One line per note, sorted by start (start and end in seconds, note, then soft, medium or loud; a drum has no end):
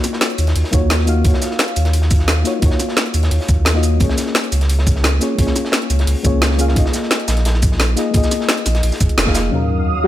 0.00 0.71 A#3 medium
0.00 0.72 D#4 medium
0.00 0.73 F4 medium
0.00 0.73 F#4 medium
0.00 0.74 C#5 medium
0.00 snare soft
0.00 closed hi-hat medium
0.00 shaker medium
0.13 snare medium
0.21 snare loud
0.21 closed hi-hat medium
0.30 closed hi-hat soft
0.38 0.54 D#2 loud
0.38 closed hi-hat medium
0.38 shaker medium
0.47 snare medium
0.47 closed hi-hat soft
0.55 0.64 D#2 medium
0.55 closed hi-hat medium
0.55 open hi-hat medium
0.64 snare soft
0.71 1.23 D#2 medium
0.71 0.79 A#3 medium
0.71 0.79 D#4 medium
0.71 0.79 F4 medium
0.71 0.80 F#4 medium
0.71 0.80 C#5 loud
0.71 kick loud
0.71 closed hi-hat medium
0.71 shaker medium
0.90 snare loud
0.90 closed hi-hat medium
0.99 snare medium
1.06 1.21 A#3 medium
1.06 1.22 D#4 medium
1.06 1.23 F4 medium
1.06 1.23 F#4 medium
1.06 1.23 F5 loud
1.06 closed hi-hat medium
1.06 shaker medium
1.22 1.33 D#2 loud
1.22 2.42 A#3 medium
1.22 2.43 D#4 medium
1.22 2.43 F4 medium
1.22 kick loud
1.22 closed hi-hat medium
1.26 2.44 F#4 medium
1.26 2.45 C#5 medium
1.34 snare medium
1.42 snare medium
1.42 closed hi-hat medium
1.42 shaker medium
1.51 snare soft
1.59 snare loud
1.59 closed hi-hat medium
1.68 closed hi-hat soft
1.76 2.44 D#2 loud
1.76 closed hi-hat medium
1.76 shaker medium
1.85 snare soft
1.85 closed hi-hat soft
1.93 closed hi-hat medium
2.02 snare medium
2.11 kick loud
2.11 closed hi-hat medium
2.11 shaker medium
2.19 snare soft
2.28 snare loud
2.28 closed hi-hat medium
2.44 2.58 A#3 medium
2.44 2.60 D#4 medium
2.44 2.61 F4 medium
2.44 2.61 F#4 medium
2.44 2.61 C#5 medium
2.44 snare soft
2.44 closed hi-hat medium
2.44 shaker medium
2.60 2.71 D#2 loud
2.60 3.45 A#3 medium
2.60 3.46 D#4 medium
2.60 3.47 F4 medium
2.60 kick loud
2.60 closed hi-hat medium
2.64 3.48 F#4 medium
2.64 3.48 C#5 medium
2.71 snare medium
2.79 snare soft
2.79 closed hi-hat medium
2.79 shaker medium
2.89 snare soft
2.97 snare loud
2.97 closed hi-hat medium
3.06 closed hi-hat soft
3.14 3.30 D#2 loud
3.14 closed hi-hat medium
3.14 shaker medium
3.23 snare medium
3.23 closed hi-hat soft
3.31 3.39 D#2 medium
3.31 closed hi-hat medium
3.31 open hi-hat medium
3.41 snare soft
3.48 3.99 D#2 medium
3.48 kick loud
3.48 closed hi-hat medium
3.48 shaker medium
3.65 snare loud
3.65 closed hi-hat medium
3.73 3.96 A#3 medium
3.73 3.98 D#4 medium
3.73 3.99 F4 medium
3.73 3.99 F#4 medium
3.73 3.99 D#5 medium
3.73 snare soft
3.83 closed hi-hat medium
3.83 shaker medium
3.98 4.09 C#2 loud
3.98 5.18 A#3 medium
3.98 5.19 C#4 medium
3.98 5.19 F4 medium
3.98 kick loud
3.98 closed hi-hat medium
4.02 5.20 G#4 medium
4.02 5.21 C#5 medium
4.09 snare medium
4.18 snare medium
4.18 closed hi-hat medium
4.18 shaker medium
4.26 snare soft
4.35 snare loud
4.35 closed hi-hat medium
4.44 closed hi-hat soft
4.52 5.20 C#2 loud
4.52 closed hi-hat medium
4.52 shaker medium
4.61 snare soft
4.61 closed hi-hat soft
4.70 closed hi-hat medium
4.79 snare medium
4.87 kick loud
4.87 closed hi-hat medium
4.87 shaker medium
4.96 snare soft
5.04 snare loud
5.04 closed hi-hat medium
5.20 5.34 A#3 medium
5.20 5.36 C#4 medium
5.20 5.37 F4 medium
5.20 5.37 G#4 medium
5.20 5.37 C#5 medium
5.20 snare soft
5.20 closed hi-hat medium
5.20 shaker medium
5.36 5.47 C#2 loud
5.36 6.21 A#3 medium
5.36 6.22 C#4 medium
5.36 6.23 F4 medium
5.36 kick loud
5.36 closed hi-hat medium
5.40 6.23 G#4 medium
5.40 6.24 C#5 medium
5.47 snare medium
5.55 snare soft
5.55 closed hi-hat medium
5.55 shaker medium
5.65 snare medium
5.72 snare loud
5.72 closed hi-hat medium
5.82 closed hi-hat soft
5.90 6.06 C#2 loud
5.90 closed hi-hat medium
5.90 shaker medium
5.99 snare medium
5.99 closed hi-hat soft
6.07 6.15 C#2 medium
6.07 closed hi-hat medium
6.07 open hi-hat medium
6.23 6.75 C#2 medium
6.23 6.31 A#3 medium
6.23 6.31 C#4 medium
6.23 6.31 F4 medium
6.23 6.32 G#4 medium
6.23 6.32 C#5 loud
6.23 kick loud
6.23 closed hi-hat medium
6.23 shaker medium
6.42 snare loud
6.42 closed hi-hat medium
6.51 snare medium
6.58 6.72 A#3 medium
6.58 6.74 C#4 medium
6.58 6.74 F4 medium
6.58 6.75 G#4 medium
6.58 6.75 F5 loud
6.58 closed hi-hat medium
6.58 shaker medium
6.68 snare soft
6.73 6.85 A#1 loud
6.73 7.94 A#3 medium
6.73 7.94 D#4 medium
6.73 7.95 F4 medium
6.73 kick loud
6.73 closed hi-hat medium
6.78 7.96 G#4 medium
6.78 7.97 D#5 medium
6.86 snare medium
6.94 snare medium
6.94 closed hi-hat medium
6.94 shaker medium
7.03 snare soft
7.11 snare loud
7.11 closed hi-hat medium
7.20 closed hi-hat soft
7.28 7.96 A#1 loud
7.28 snare loud
7.28 closed hi-hat medium
7.28 shaker medium
7.37 snare soft
7.37 closed hi-hat soft
7.45 snare loud
7.45 closed hi-hat medium
7.54 snare medium
7.62 kick loud
7.62 closed hi-hat medium
7.62 shaker medium
7.72 snare soft
7.80 snare loud
7.80 closed hi-hat loud
7.80 closed hi-hat medium
7.96 8.10 A#3 medium
7.96 8.12 D#4 medium
7.96 8.12 F4 medium
7.96 8.13 G#4 medium
7.96 8.13 D#5 medium
7.96 snare soft
7.96 closed hi-hat medium
7.96 shaker medium
8.11 8.22 A#1 loud
8.11 8.97 A#3 medium
8.11 8.98 D#4 medium
8.11 8.99 F4 medium
8.11 kick loud
8.11 closed hi-hat medium
8.11 closed hi-hat loud
8.16 8.99 G#4 medium
8.16 9.00 D#5 medium
8.23 snare medium
8.23 shaker soft
8.31 snare soft
8.31 closed hi-hat medium
8.31 shaker medium
8.40 snare soft
8.49 snare loud
8.49 closed hi-hat medium
8.58 closed hi-hat soft
8.66 8.82 A#1 loud
8.66 snare soft
8.66 closed hi-hat medium
8.66 shaker medium
8.75 snare medium
8.75 closed hi-hat soft
8.83 8.91 A#1 medium
8.83 closed hi-hat loud
8.83 open hi-hat medium
8.92 snare soft
8.92 shaker soft
9.00 9.09 F1 medium
9.00 kick loud
9.00 closed hi-hat medium
9.00 shaker medium
9.09 closed hi-hat soft
9.17 9.51 F1 loud
9.17 snare loud
9.17 snare soft
9.17 closed hi-hat loud
9.17 closed hi-hat medium
9.25 9.50 A#3 medium
9.25 9.50 D#4 medium
9.25 9.50 F4 medium
9.25 9.51 G#4 medium
9.25 9.51 F5 medium
9.25 kick medium
9.25 snare soft
9.35 snare loud
9.35 closed hi-hat medium
9.35 shaker medium
9.49 10.07 D#2 medium
9.49 10.07 F#3 medium
9.49 10.07 C#4 medium
9.49 10.07 D#4 medium
9.49 10.07 F5 medium
9.49 10.07 D#6 medium
9.49 sub drop medium
9.54 10.07 A#4 medium
9.54 10.07 F5 medium
9.69 closed hi-hat medium
9.69 shaker medium
9.87 closed hi-hat medium
10.04 10.07 F#4 medium
10.04 closed hi-hat medium
10.04 shaker medium